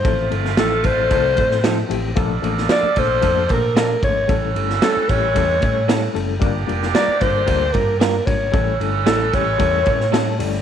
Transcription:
<<
  \new Staff \with { instrumentName = "Alto saxophone" } { \time 4/4 \key a \phrygian \tempo 4 = 113 c''8 r8 a'8 c''2 r8 | r4 d''8 c''4 bes'8 bes'8 cis''8~ | cis''8 r8 a'8 cis''2 r8 | r4 d''8 c''4 bes'8 bes'8 cis''8~ |
cis''8 r8 a'8 cis''2 r8 | }
  \new Staff \with { instrumentName = "Clean electric guitar" } { \time 4/4 \key a \phrygian r4 <f c' e' a'>8 r4. <f c' e' a'>8 r8 | r4 <f bes d' a'>8 r4. <f bes d' a'>8 r8 | r4 <g cis' e' a'>8 r4. <g cis' e' a'>8 r8 | r4 <g d' f' bes'>8 r4. <g d' f' bes'>8 r8 |
r4 <g cis' e' a'>8 r4. <g cis' e' a'>8 r8 | }
  \new Staff \with { instrumentName = "Reed electric piano" } { \time 4/4 \key a \phrygian <f a c' e' a'>8 <f a c' e' a'>8 <f a c' e' a'>8 <f a c' e' a'>8 <f a c' e' a'>8 <f a c' e' a'>8 <f a c' e' a'>8 <f a c' e' g'>8 | <f a bes d' a'>8 <f a bes d' a'>8 <f a bes d' a'>8 <f a bes d' a'>8 <f a bes d' a'>8 <f a bes d' a'>8 <f a bes d' a'>8 <f a bes d' a'>8 | <g a cis' e' a'>8 <g a cis' e' a'>8 <g a cis' e' a'>8 <g a cis' e' g'>8 <g a cis' e' a'>8 <g a cis' e' a'>8 <g a cis' e' a'>8 <g a cis' e' a'>8 | <g bes d' f' bes'>8 <g bes d' f' bes'>8 <g bes d' f' bes'>8 <g bes d' f' bes'>8 <g bes d' f' bes'>8 <g bes d' f' bes'>8 <g bes d' f' bes'>8 <g bes d' f' bes'>8 |
<g a cis' e' a'>8 <g a cis' e' a'>8 <g a cis' e' a'>8 <g a cis' e' g'>8 <g a cis' e' a'>8 <g a cis' e' a'>8 <g a cis' e' a' a''>8 <g a cis' e' a' d''>8 | }
  \new Staff \with { instrumentName = "Saxophone section" } { \time 4/4 \key a \phrygian <c a f'>2.~ <c a f'>8 r8 | <f d' a'>2.~ <f d' a'>8 r8 | <e cis' a'>2.~ <e cis' a'>8 r8 | <d bes g'>2.~ <d bes g'>8 r8 |
<e cis' a'>2.~ <e cis' a'>8 r8 | }
  \new Staff \with { instrumentName = "Fingered electric bass" } { \clef bass \time 4/4 \key a \phrygian a,,8 g,,8 a,,8. a,,16 c,8 a,4 a,,8 | bes,,8 a,,8 r8 bes,,8 f,8 bes,4 gis,,8 | a,,8 g,,8 r8 a,,8 e,8 a,4 fis,,8 | g,,8 f,,8 r8 g,,8 d,8 g,4 gis,,8 |
a,,8 g,,8 a,,8 a,,8 e,8 a,4 g,,8 | }
  \new DrumStaff \with { instrumentName = "Drums" } \drummode { \time 4/4 <bd cymr>8 cymr16 sn16 <cymr sn>8 <bd cymr>8 <bd cymr>8 <bd cymr>16 sn16 <cymr sn>8 cymr8 | <bd cymr>8 cymr16 sn16 <cymr sn>8 <bd cymr>8 <bd cymr>8 <bd cymr>8 <cymr sn>8 <bd cymr>8 | <bd cymr>8 cymr16 sn16 <cymr sn>8 <bd cymr>8 <bd cymr>8 <bd cymr>8 <cymr sn>8 cymr8 | <bd cymr>8 cymr16 sn16 <cymr sn>8 <bd cymr>8 <bd cymr>8 <bd cymr>8 <cymr sn>8 <bd cymr>8 |
<bd cymr>8 cymr8 <cymr sn>8 <bd cymr>8 <bd cymr>8 <bd cymr>16 sn16 <cymr sn>8 <hho cymr>8 | }
>>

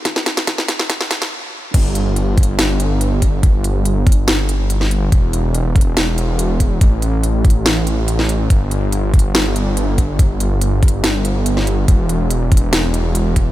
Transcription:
<<
  \new Staff \with { instrumentName = "Detuned saw bass" } { \clef bass \time 4/4 \key e \dorian \tempo 4 = 142 r1 | g,,1~ | g,,1 | e,,1 |
a,,1 | g,,1~ | g,,1 | e,,1 | }
  \new DrumStaff \with { instrumentName = "Drums" } \drummode { \time 4/4 <hh bd sn>16 sn16 <hh sn>16 <hh sn>16 <hh bd sn>16 sn16 <hh sn>16 sn16 <hh bd sn>16 sn16 <hh sn>16 <hh sn>16 r4 | <cymc hh bd>8 hh8 hh8 <hh bd>32 hh16. <hh sn>8 hh8 hh8 <hh bd>8 | <hh bd>8 hh8 hh8 <hh bd>32 hh16. <hh sn>8 hh8 hh16 sn16 hh8 | <hh bd>8 hh8 hh8 <hh bd>32 hh16. <hh sn>8 hh8 hh8 <hh bd>8 |
<hh bd>8 hh8 hh8 <hh bd>32 hh16. <hh sn>8 hh8 hh16 sn16 hh8 | <hh bd>8 hh8 hh8 <hh bd>32 hh16. <hh sn>8 hh8 hh8 <hh bd>8 | <hh bd>8 hh8 hh8 <hh bd>32 hh16. <hh sn>8 hh8 hh16 sn16 hh8 | <hh bd>8 hh8 hh8 <hh bd>32 hh16. <hh sn>8 hh8 hh8 <hh bd>8 | }
>>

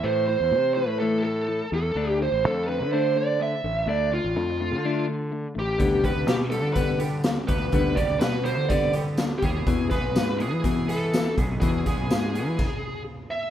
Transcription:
<<
  \new Staff \with { instrumentName = "Lead electric guitar" } { \time 4/4 \key g \mixolydian \tempo 4 = 124 c''8 c''4 b'8 a'8 a'4 a'8~ | a'8 c''8 a'8 b'8 c''8 d''8 e''4 | d''8 f'2 r4 g'8~ | g'8 b'8 g'8 a'8 b'8 r4 b'8~ |
b'8 d''8 b'8 c''8 d''8 r4 gis'8~ | gis'8 b'4 gis'4 a'4 r8 | gis'2. r8 e''8 | }
  \new Staff \with { instrumentName = "Overdriven electric guitar" } { \time 4/4 \key g \mixolydian r1 | r1 | r1 | r8 <d g b g'>8 r8 <d g b g'>8 r8 <d g b g'>8 r8 <d g b g'>8 |
r8 <d g b g'>8 r8 <d g b g'>8 r8 <d g b g'>8 r8 <d g b g'>8 | r8 <e gis b gis'>8 r8 <e gis b gis'>8 r8 <e gis b gis'>8 r8 <e gis b gis'>8 | r8 <e gis b gis'>8 r8 <e gis b gis'>8 r2 | }
  \new Staff \with { instrumentName = "Overdriven electric guitar" } { \clef bass \time 4/4 \key g \mixolydian <a, e a>8 <a, e>8 <a, e>8 <a, e>8 <a, e a>8 <a, e>8 <a, e>8 <a, e>8 | <d a d'>8 <d a>8 <d a>8 <d a>8 <d a d'>8 <d a>8 <d a>8 <d a>8 | <d a d'>8 <d a>8 <d a>8 <d a>8 <d a d'>8 <d a>8 <d a>8 <d a>8 | <d g b>8 <d g>8 <d g>8 <d g>8 <d g b>8 <d g>8 <d g>8 <d g>8 |
<d g b>8 <d g>8 <d g>8 <d g>8 <d g b>8 <d g>8 <d g>8 <d g>8 | <e, b, e>8 <e, b,>8 <e, b,>8 <e, b,>8 <e, b, e>8 <e, b,>8 <e, b,>8 <e, b,>8 | <e, b, e>8 <e, b,>8 <e, b,>8 <e, b,>8 r2 | }
  \new Staff \with { instrumentName = "Fingered electric bass" } { \clef bass \time 4/4 \key g \mixolydian a,8. e,16 c8. a,4.~ a,16 e,8 | d,8. a,,16 f,8. d4.~ d16 a,,8 | d,8. a,,16 f,8. d4.~ d16 a,,8 | d,8. d,16 b,8. d4.~ d16 d,8 |
d,8. d,16 b,8. d4.~ d16 dis,8 | e,8. b,,16 gis,8. e4.~ e16 b,,8 | e,8. b,,16 gis,8. e16 r2 | }
  \new DrumStaff \with { instrumentName = "Drums" } \drummode { \time 4/4 r4 r4 r4 r4 | r4 r4 r4 r4 | r4 r4 r4 r4 | <hh bd>8 <hh bd>8 <hh sn tamb>8 hh8 <hh bd>8 hh8 <hh sn tamb>8 <hh bd>8 |
<hh bd>8 <hh bd>8 <hh sn tamb>8 hh8 <hh bd>8 hh8 <hh sn tamb>8 <hh bd>8 | <hh bd>8 <hh bd sn>8 <hh sn tamb>8 hh8 <hh bd>8 hh8 <hh sn tamb>8 <hh bd>8 | <hh bd>8 <hh bd sn>8 <hh sn tamb>8 hh8 <cymc bd>4 r4 | }
>>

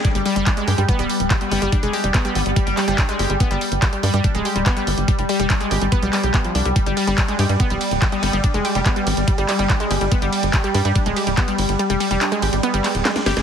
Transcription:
<<
  \new Staff \with { instrumentName = "Wobble bass" } { \time 4/4 \key g \major \tempo 4 = 143 r2. r16 b8. | r4. b16 b16 g4 r4 | r1 | r1 |
r2. r16 b8. | r8. g16 g16 r2 r8. | r1 | r1 | }
  \new Staff \with { instrumentName = "Ambient pad" } { \clef bass \time 4/4 \key g \major g1~ | g1~ | g1~ | g1~ |
g1~ | g1~ | g1~ | g1 | }
  \new Staff \with { instrumentName = "Synth arpeggio sound" } { \clef bass \time 4/4 \key g \major g16 g16 g16 g16 d'16 aes16 g'16 g16 b16 g16 r8 g16 g16 g16 g16 | d'16 aes16 g'16 g16 b16 g16 r8 g16 g16 g16 g16 d'16 aes16 g'16 g16 | b16 g16 r8 g16 g16 g16 g16 d'16 aes16 g'16 g16 b16 g16 r8 | g16 g16 g16 g16 d'16 aes16 g'16 g16 b16 g16 g16 g'16 b16 f16 d'16 g16 |
g16 g16 g16 g16 d'16 aes16 g'16 g16 b16 g16 r8 g16 g16 g16 g16 | d'16 aes16 g'16 g16 b16 g16 r8 g16 g16 g16 g16 d'16 aes16 g'16 g16 | b16 g16 r8 g16 g16 g16 g16 d'16 aes16 g'16 g16 b16 g16 r8 | g16 g16 g16 g16 d'16 aes16 g'16 g16 b16 g16 aes16 r16 aes16 d'16 g'16 aes'16 | }
  \new Staff \with { instrumentName = "Analog synth bass" } { \clef bass \time 4/4 \key g \major r16 g,,16 r16 g,,16 r8 g,16 g,16 r16 d,,16 r16 d,,16 r8 g,,16 g,,16 | r16 f,,16 r16 f,,16 r8 aes,,16 aes,,16 r16 g,,16 r16 g,,16 r8 g,,16 g,,16 | r16 g,,16 r16 g,,16 r8 g,16 g,16 r16 d,,16 r16 d,,16 r8 g,,16 g,,16 | r16 f,,16 r16 f,,16 r8 aes,,16 aes,,16 r16 b,,16 r16 b,,16 r8 c,16 c,16 |
r16 g,,16 r16 g,,16 r8 g,16 g,16 r16 d,,16 r16 d,,16 r8 g,,16 g,,16 | r16 f,,16 r16 f,,16 r8 aes,,16 aes,,16 r16 g,,16 r16 g,,16 r8 g,,16 g,,16 | r16 g,,16 r16 g,,16 r8 g,16 g,16 r16 d,,16 r16 d,,16 r8 g,,16 g,,16 | r16 f,,16 r16 f,,16 r8 aes,,16 aes,,16 r16 g,,16 r16 d,,16 r8 g,,16 g,,16 | }
  \new DrumStaff \with { instrumentName = "Drums" } \drummode { \time 4/4 <hh bd>16 hh16 hho16 hh16 <hc hh bd>16 hh16 hho16 hh16 <hh bd>16 hh16 hho16 hh16 <hc hh bd>16 hh16 hho16 hh16 | <hh bd>16 hh16 hho16 hh16 <hc hh bd>16 hh16 hho16 hh16 <hh bd>16 hh16 <hc hho>16 hh16 <hc hh bd>16 hh16 hho16 hh16 | <hh bd>16 hh16 hho16 hh16 <hc hh bd>16 hh16 hho16 hh16 <hh bd>16 hh16 hho16 hh16 <hc hh bd>16 hh16 hho16 hh16 | <hh bd>16 hh16 hho16 hh16 <hc hh bd>16 hh16 hho16 hh16 <hh bd>16 hh16 <hc hho>16 hh16 <hc hh bd>16 hh16 hho16 hh16 |
<hh bd>16 hh16 <hho cymr>16 hh16 <hc hh bd>16 hh16 <hho cymr>16 hh16 <hh bd>16 hh16 <hho cymr>16 hh16 <hc hh bd>16 hh16 <hho cymr>16 hh16 | <hh bd>16 hh16 <hho cymr>16 hh16 <hc hh bd>16 hh16 <hho cymr>16 hh16 <hh bd>16 hh16 <hc hho cymr>16 hh16 <hc hh bd>16 hh16 <hho cymr>16 hh16 | <hh bd>16 hh16 <hho cymr>16 hh16 <hc hh bd>16 hh16 <hho cymr>16 hh16 <hh bd>16 hh16 <hho cymr>16 hh16 <hc hh bd>16 hh16 <hho cymr>16 hh16 | hh16 hh16 <hho cymr>16 hh16 <hc hh>16 hh16 <hho cymr>16 hh16 hh16 hh16 <hc hho cymr>16 hh16 <hc hh sn>16 <hh sn>16 <hho cymr sn>16 <hh sn>16 | }
>>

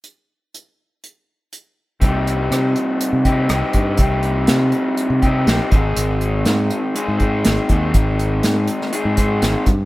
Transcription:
<<
  \new Staff \with { instrumentName = "Overdriven electric guitar" } { \time 4/4 \key c \minor \tempo 4 = 122 r1 | <c g c' ees' g'>2~ <c g c' ees' g'>8 <c g c' ees' g'>8 <c g c' ees' g'>4 | <c g c' ees' g'>2~ <c g c' ees' g'>8 <c g c' ees' g'>8 <c g c' ees' g'>8 <aes, ees aes c' ees' aes'>8~ | <aes, ees aes c' ees' aes'>2 <aes, ees aes c' ees' aes'>8 <aes, ees aes c' ees' aes'>4 <aes, ees aes c' ees' aes'>8~ |
<aes, ees aes c' ees' aes'>2 <aes, ees aes c' ees' aes'>8 <aes, ees aes c' ees' aes'>4 r8 | }
  \new Staff \with { instrumentName = "Fingered electric bass" } { \clef bass \time 4/4 \key c \minor r1 | c,4 c8 r8. c8. c,16 r16 g,8 | c,4 c8 r8. c8. bes,,16 r16 aes,,8 | aes,,4 aes,8 r8. aes,8. aes,,16 r16 ees,8 |
aes,,4 aes,8 r8. aes,8. aes,,16 r16 g,8 | }
  \new DrumStaff \with { instrumentName = "Drums" } \drummode { \time 4/4 hh4 hh4 hh4 hh4 | <hh bd>8 hh8 <hh ss>8 hh8 hh8 <hh bd>8 <hh ss>8 <hh bd>8 | <hh bd>8 hh8 <hh sn>8 hh8 hh8 <hh bd>8 <hh sn>8 <hh bd>8 | hh8 hh8 <hh sn>8 hh8 hh8 <hh bd>8 <hh sn>8 <hh bd>8 |
<hh bd>8 hh8 <hh sn>8 hh16 sn16 hh8 <hh bd>8 <hh sn>8 <hh bd>8 | }
>>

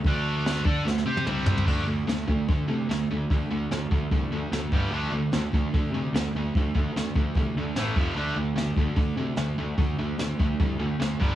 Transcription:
<<
  \new Staff \with { instrumentName = "Distorted electric guitar" } { \clef bass \time 4/4 \key c \mixolydian \tempo 4 = 148 <d a d'>4. <d' a' d''>8 <d a>8 <c' g' c''>8 <c g c'>4 | <d a d'>8 <d a>8 <d a>8 <d a>8 <d a>8 <d a>8 <d a>8 <d a>8 | <d a>8 <d a>8 <d a>8 <d a>8 <d a>8 <d a>8 <d a>8 <g, d g>8 | <d a d'>8 <d a>8 <d a>8 <d a>8 <d a>8 <d a>8 <d a>8 <d a>8 |
<d a>8 <d a>8 <d a>8 <d a>8 <d a>8 <d a>8 <a, e a>8 <f, c f>8 | <d a d'>8 <d a>8 <d a>8 <d a>8 <d a>8 <d a>8 <d a>8 <d a>8 | <d a>8 <d a>8 <d a>8 <d a>8 <d a>8 <d a>8 <d a>8 <g, d g>8 | }
  \new Staff \with { instrumentName = "Picked electric bass" } { \clef bass \time 4/4 \key c \mixolydian d,4. d8 d,8 c8 c,4 | d,8 d,8 d,8 d,8 d8 c8 d,8 d,8 | d,8 d,8 d,8 d,8 c,8 d,8 d,8 g,,8 | d,8 d,8 d,8 d,8 d8 c8 d,8 d,8 |
d,8 d,8 d,8 d,8 c,8 d,8 a,,8 f,,8 | d,8 d,8 d,8 d,8 d8 c8 d,8 d,8 | d,8 d,8 d,8 d,8 c,8 d,8 d,8 g,,8 | }
  \new DrumStaff \with { instrumentName = "Drums" } \drummode { \time 4/4 <hho bd>4 <hho sn>8 bd8 sn16 sn8 tommh16 toml8 tomfh16 tomfh16 | <cymc bd>4 <hho sn>8 bd8 <hho bd>4 <hho sn>4 | <hho bd>4 <hho sn>8 bd8 <hho bd>4 <hho sn>8 bd8 | hho4 <hho sn>8 bd8 <hho bd>4 <hho sn>4 |
<hho bd>8 bd8 <hho sn>8 bd8 <hho bd>4 <hho sn>8 bd8 | hho4 <hho sn>8 bd8 <hho bd>4 <hho sn>4 | <hho bd>4 <hho sn>8 bd8 <hho bd>4 <hho sn>8 bd8 | }
>>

